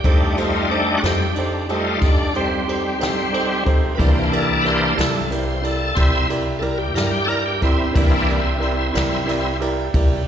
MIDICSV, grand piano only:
0, 0, Header, 1, 2, 480
1, 0, Start_track
1, 0, Tempo, 660066
1, 30, Time_signature, 12, 3, 24, 8
1, 7473, End_track
2, 0, Start_track
2, 0, Title_t, "Grand piano"
2, 0, Program_c, 0, 0
2, 29, Note_on_c, 0, 63, 57
2, 29, Note_on_c, 0, 67, 55
2, 30, Note_on_c, 0, 69, 53
2, 40, Note_on_c, 0, 72, 61
2, 209, Note_off_c, 0, 63, 0
2, 209, Note_off_c, 0, 67, 0
2, 210, Note_off_c, 0, 69, 0
2, 215, Note_off_c, 0, 72, 0
2, 259, Note_on_c, 0, 63, 53
2, 264, Note_on_c, 0, 67, 46
2, 274, Note_on_c, 0, 69, 43
2, 278, Note_on_c, 0, 72, 55
2, 444, Note_off_c, 0, 63, 0
2, 446, Note_off_c, 0, 67, 0
2, 452, Note_off_c, 0, 69, 0
2, 454, Note_off_c, 0, 72, 0
2, 502, Note_on_c, 0, 63, 53
2, 505, Note_on_c, 0, 67, 46
2, 515, Note_on_c, 0, 69, 52
2, 518, Note_on_c, 0, 72, 60
2, 686, Note_off_c, 0, 63, 0
2, 687, Note_off_c, 0, 67, 0
2, 692, Note_off_c, 0, 69, 0
2, 693, Note_off_c, 0, 72, 0
2, 744, Note_on_c, 0, 63, 56
2, 749, Note_on_c, 0, 67, 51
2, 753, Note_on_c, 0, 69, 51
2, 757, Note_on_c, 0, 72, 61
2, 926, Note_off_c, 0, 63, 0
2, 929, Note_off_c, 0, 67, 0
2, 931, Note_off_c, 0, 69, 0
2, 933, Note_off_c, 0, 72, 0
2, 988, Note_on_c, 0, 63, 53
2, 996, Note_on_c, 0, 67, 48
2, 998, Note_on_c, 0, 69, 45
2, 1007, Note_on_c, 0, 72, 60
2, 1168, Note_off_c, 0, 63, 0
2, 1172, Note_off_c, 0, 67, 0
2, 1173, Note_off_c, 0, 69, 0
2, 1177, Note_off_c, 0, 72, 0
2, 1227, Note_on_c, 0, 63, 57
2, 1228, Note_on_c, 0, 67, 49
2, 1236, Note_on_c, 0, 69, 48
2, 1237, Note_on_c, 0, 72, 55
2, 1407, Note_off_c, 0, 63, 0
2, 1408, Note_off_c, 0, 67, 0
2, 1412, Note_off_c, 0, 69, 0
2, 1413, Note_off_c, 0, 72, 0
2, 1457, Note_on_c, 0, 63, 57
2, 1465, Note_on_c, 0, 67, 52
2, 1474, Note_on_c, 0, 69, 50
2, 1477, Note_on_c, 0, 75, 60
2, 1642, Note_off_c, 0, 63, 0
2, 1647, Note_off_c, 0, 67, 0
2, 1651, Note_off_c, 0, 69, 0
2, 1652, Note_off_c, 0, 75, 0
2, 1698, Note_on_c, 0, 63, 52
2, 1707, Note_on_c, 0, 67, 43
2, 1711, Note_on_c, 0, 69, 42
2, 1715, Note_on_c, 0, 72, 59
2, 1883, Note_off_c, 0, 63, 0
2, 1888, Note_off_c, 0, 67, 0
2, 1889, Note_off_c, 0, 69, 0
2, 1891, Note_off_c, 0, 72, 0
2, 1944, Note_on_c, 0, 63, 47
2, 1948, Note_on_c, 0, 67, 45
2, 1954, Note_on_c, 0, 69, 40
2, 1956, Note_on_c, 0, 72, 58
2, 2126, Note_off_c, 0, 63, 0
2, 2128, Note_off_c, 0, 67, 0
2, 2131, Note_off_c, 0, 69, 0
2, 2132, Note_off_c, 0, 72, 0
2, 2167, Note_on_c, 0, 63, 53
2, 2173, Note_on_c, 0, 67, 50
2, 2179, Note_on_c, 0, 69, 52
2, 2185, Note_on_c, 0, 72, 61
2, 2357, Note_off_c, 0, 63, 0
2, 2361, Note_off_c, 0, 67, 0
2, 2363, Note_off_c, 0, 69, 0
2, 2366, Note_off_c, 0, 72, 0
2, 2416, Note_on_c, 0, 63, 62
2, 2417, Note_on_c, 0, 67, 49
2, 2421, Note_on_c, 0, 69, 51
2, 2429, Note_on_c, 0, 72, 67
2, 2602, Note_off_c, 0, 63, 0
2, 2603, Note_off_c, 0, 67, 0
2, 2604, Note_off_c, 0, 69, 0
2, 2608, Note_off_c, 0, 72, 0
2, 2654, Note_on_c, 0, 63, 58
2, 2657, Note_on_c, 0, 67, 59
2, 2657, Note_on_c, 0, 69, 49
2, 2665, Note_on_c, 0, 72, 69
2, 2841, Note_off_c, 0, 63, 0
2, 2842, Note_off_c, 0, 67, 0
2, 2842, Note_off_c, 0, 69, 0
2, 2846, Note_off_c, 0, 72, 0
2, 2893, Note_on_c, 0, 64, 60
2, 2901, Note_on_c, 0, 67, 55
2, 2905, Note_on_c, 0, 70, 54
2, 2907, Note_on_c, 0, 74, 66
2, 3080, Note_off_c, 0, 64, 0
2, 3084, Note_off_c, 0, 67, 0
2, 3086, Note_off_c, 0, 70, 0
2, 3087, Note_off_c, 0, 74, 0
2, 3141, Note_on_c, 0, 64, 56
2, 3141, Note_on_c, 0, 67, 50
2, 3147, Note_on_c, 0, 70, 50
2, 3153, Note_on_c, 0, 74, 62
2, 3324, Note_off_c, 0, 64, 0
2, 3324, Note_off_c, 0, 67, 0
2, 3327, Note_off_c, 0, 70, 0
2, 3330, Note_off_c, 0, 74, 0
2, 3371, Note_on_c, 0, 64, 55
2, 3378, Note_on_c, 0, 67, 52
2, 3381, Note_on_c, 0, 70, 53
2, 3381, Note_on_c, 0, 74, 63
2, 3559, Note_off_c, 0, 64, 0
2, 3563, Note_off_c, 0, 67, 0
2, 3564, Note_off_c, 0, 74, 0
2, 3565, Note_off_c, 0, 70, 0
2, 3607, Note_on_c, 0, 64, 59
2, 3611, Note_on_c, 0, 67, 48
2, 3617, Note_on_c, 0, 70, 54
2, 3621, Note_on_c, 0, 74, 66
2, 3797, Note_off_c, 0, 64, 0
2, 3799, Note_off_c, 0, 67, 0
2, 3803, Note_off_c, 0, 70, 0
2, 3804, Note_off_c, 0, 74, 0
2, 3858, Note_on_c, 0, 67, 51
2, 3859, Note_on_c, 0, 64, 54
2, 3862, Note_on_c, 0, 70, 51
2, 3870, Note_on_c, 0, 74, 58
2, 4043, Note_off_c, 0, 64, 0
2, 4043, Note_off_c, 0, 67, 0
2, 4045, Note_off_c, 0, 70, 0
2, 4049, Note_off_c, 0, 74, 0
2, 4085, Note_on_c, 0, 64, 54
2, 4091, Note_on_c, 0, 67, 44
2, 4097, Note_on_c, 0, 70, 49
2, 4103, Note_on_c, 0, 74, 62
2, 4276, Note_off_c, 0, 64, 0
2, 4279, Note_off_c, 0, 67, 0
2, 4282, Note_off_c, 0, 70, 0
2, 4285, Note_off_c, 0, 74, 0
2, 4337, Note_on_c, 0, 64, 57
2, 4344, Note_on_c, 0, 67, 49
2, 4352, Note_on_c, 0, 70, 45
2, 4354, Note_on_c, 0, 74, 55
2, 4522, Note_off_c, 0, 64, 0
2, 4526, Note_off_c, 0, 67, 0
2, 4530, Note_off_c, 0, 70, 0
2, 4531, Note_off_c, 0, 74, 0
2, 4576, Note_on_c, 0, 64, 56
2, 4578, Note_on_c, 0, 67, 52
2, 4582, Note_on_c, 0, 70, 48
2, 4588, Note_on_c, 0, 74, 65
2, 4762, Note_off_c, 0, 64, 0
2, 4763, Note_off_c, 0, 67, 0
2, 4765, Note_off_c, 0, 70, 0
2, 4768, Note_off_c, 0, 74, 0
2, 4810, Note_on_c, 0, 64, 52
2, 4814, Note_on_c, 0, 67, 47
2, 4816, Note_on_c, 0, 70, 51
2, 4822, Note_on_c, 0, 74, 56
2, 4999, Note_off_c, 0, 64, 0
2, 5001, Note_off_c, 0, 67, 0
2, 5002, Note_off_c, 0, 70, 0
2, 5005, Note_off_c, 0, 74, 0
2, 5049, Note_on_c, 0, 64, 62
2, 5055, Note_on_c, 0, 67, 52
2, 5060, Note_on_c, 0, 70, 52
2, 5065, Note_on_c, 0, 74, 64
2, 5238, Note_off_c, 0, 64, 0
2, 5242, Note_off_c, 0, 67, 0
2, 5244, Note_off_c, 0, 70, 0
2, 5246, Note_off_c, 0, 74, 0
2, 5286, Note_on_c, 0, 64, 48
2, 5295, Note_on_c, 0, 67, 44
2, 5297, Note_on_c, 0, 70, 47
2, 5304, Note_on_c, 0, 74, 57
2, 5477, Note_off_c, 0, 64, 0
2, 5481, Note_off_c, 0, 67, 0
2, 5482, Note_off_c, 0, 70, 0
2, 5486, Note_off_c, 0, 74, 0
2, 5531, Note_on_c, 0, 64, 52
2, 5534, Note_on_c, 0, 67, 47
2, 5540, Note_on_c, 0, 70, 49
2, 5547, Note_on_c, 0, 74, 56
2, 5719, Note_off_c, 0, 64, 0
2, 5721, Note_off_c, 0, 67, 0
2, 5724, Note_off_c, 0, 70, 0
2, 5727, Note_off_c, 0, 74, 0
2, 5760, Note_on_c, 0, 64, 68
2, 5765, Note_on_c, 0, 67, 54
2, 5775, Note_on_c, 0, 70, 54
2, 5778, Note_on_c, 0, 74, 75
2, 5954, Note_off_c, 0, 64, 0
2, 5956, Note_off_c, 0, 67, 0
2, 5961, Note_off_c, 0, 70, 0
2, 5963, Note_off_c, 0, 74, 0
2, 6019, Note_on_c, 0, 64, 52
2, 6023, Note_on_c, 0, 67, 51
2, 6027, Note_on_c, 0, 70, 47
2, 6030, Note_on_c, 0, 74, 69
2, 6203, Note_off_c, 0, 64, 0
2, 6205, Note_off_c, 0, 67, 0
2, 6207, Note_off_c, 0, 70, 0
2, 6209, Note_off_c, 0, 74, 0
2, 6244, Note_on_c, 0, 64, 65
2, 6245, Note_on_c, 0, 67, 66
2, 6254, Note_on_c, 0, 70, 62
2, 6262, Note_on_c, 0, 74, 72
2, 6436, Note_off_c, 0, 64, 0
2, 6436, Note_off_c, 0, 67, 0
2, 6441, Note_off_c, 0, 70, 0
2, 6445, Note_off_c, 0, 74, 0
2, 6491, Note_on_c, 0, 64, 69
2, 6499, Note_on_c, 0, 67, 61
2, 6505, Note_on_c, 0, 74, 70
2, 6507, Note_on_c, 0, 70, 66
2, 6679, Note_off_c, 0, 64, 0
2, 6683, Note_off_c, 0, 67, 0
2, 6686, Note_off_c, 0, 74, 0
2, 6687, Note_off_c, 0, 70, 0
2, 6731, Note_on_c, 0, 64, 67
2, 6738, Note_on_c, 0, 67, 61
2, 6744, Note_on_c, 0, 74, 75
2, 6746, Note_on_c, 0, 70, 55
2, 6919, Note_off_c, 0, 64, 0
2, 6923, Note_off_c, 0, 67, 0
2, 6925, Note_off_c, 0, 74, 0
2, 6927, Note_off_c, 0, 70, 0
2, 6981, Note_on_c, 0, 64, 65
2, 6983, Note_on_c, 0, 67, 59
2, 6991, Note_on_c, 0, 70, 64
2, 6996, Note_on_c, 0, 74, 65
2, 7164, Note_off_c, 0, 64, 0
2, 7165, Note_off_c, 0, 67, 0
2, 7169, Note_off_c, 0, 70, 0
2, 7172, Note_off_c, 0, 74, 0
2, 7226, Note_on_c, 0, 64, 64
2, 7231, Note_on_c, 0, 70, 61
2, 7233, Note_on_c, 0, 67, 58
2, 7241, Note_on_c, 0, 74, 74
2, 7407, Note_off_c, 0, 64, 0
2, 7409, Note_off_c, 0, 70, 0
2, 7410, Note_off_c, 0, 67, 0
2, 7414, Note_off_c, 0, 74, 0
2, 7473, End_track
0, 0, End_of_file